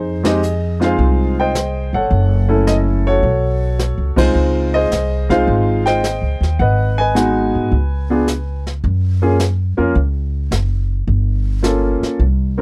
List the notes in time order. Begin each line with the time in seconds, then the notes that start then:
Already playing: F2 D#4 G#4 C5
0.23 G#3 C4 D#4 G4 G#4 D#5, snare, ride
0.43 hi-hat pedal
0.80 G#3 C4 D#4 F4 F5, snare
0.84 G#4 C5
0.99 C2, brush sweep, kick
1.40 C5 D#5 G5
1.55 snare, hi-hat pedal
1.93 G1 A4 C#5 F#5
2.11 F#1, brush sweep, kick
2.48 A3 C#4 E4 A4
2.67 D#5, snare, hi-hat pedal
3.07 F#4 A4 C#5
3.23 B1, brush sweep, kick
3.79 snare, hi-hat pedal
3.98 C#2
4.16 C2 G#3 C4 D#4 F4 C5, kick, ride
4.35 C#2, brush sweep
4.74 G#4 C5 D#5
4.91 C2, snare, hi-hat pedal
5.29 G#3 C4 D#4 F4 G#4 C5 F5, kick, snare
5.47 G#1, brush sweep, kick
5.86 C5 D#5 G5, snare
6.04 snare, hi-hat pedal
6.22 C#2
6.41 D#2, snare
6.59 G#1 B4 D#5 F#5, brush sweep, kick
6.98 B4 D#5 G#5
7.15 G#3 B3 D#4 F#4, snare, hi-hat pedal
7.55 G#2
7.72 C#2, brush sweep, kick
8.10 B3 D4 F4 G#4
8.28 snare, hi-hat pedal
8.67 snare
8.84 F#2, brush sweep, kick
9.22 A#3 C#4 F4 G#4
9.39 snare, hi-hat pedal
9.77 F2 A#3 C#4 F4 A#4
9.95 C#2, brush sweep, kick
10.51 F#1, snare, hi-hat pedal
11.07 G1, brush sweep, kick
11.63 A#3 C#4 F4 A4, snare, hi-hat pedal
12.01 muted upright bass stroke, snare
12.19 C2, brush sweep, kick
12.58 A#3 C4 E4